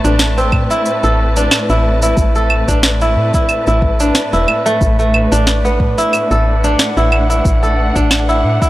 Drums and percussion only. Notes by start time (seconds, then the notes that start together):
0.05 shaker
0.19 snare, shaker
0.38 shaker
0.52 kick, claves
0.71 shaker
0.86 shaker
1.04 shaker
1.36 shaker
1.51 snare, claves, shaker
1.69 shaker
2.02 shaker
2.17 kick, shaker
2.35 shaker
2.50 claves
2.68 kick, shaker
2.83 snare, shaker
3.01 shaker
3.34 kick, shaker
3.49 claves, shaker
3.67 shaker
3.82 kick
4.00 shaker
4.15 snare, shaker
4.33 shaker
4.48 claves
4.66 shaker
4.81 kick, shaker
4.99 shaker
5.14 claves
5.32 shaker
5.47 snare, shaker
5.65 shaker
5.80 kick
5.98 shaker
6.13 claves, shaker
6.31 shaker
6.64 shaker
6.79 snare, shaker
6.97 shaker
7.12 claves
7.30 shaker
7.45 kick, shaker
7.63 shaker
7.96 kick, shaker
8.11 snare, claves, shaker
8.29 shaker
8.62 kick, shaker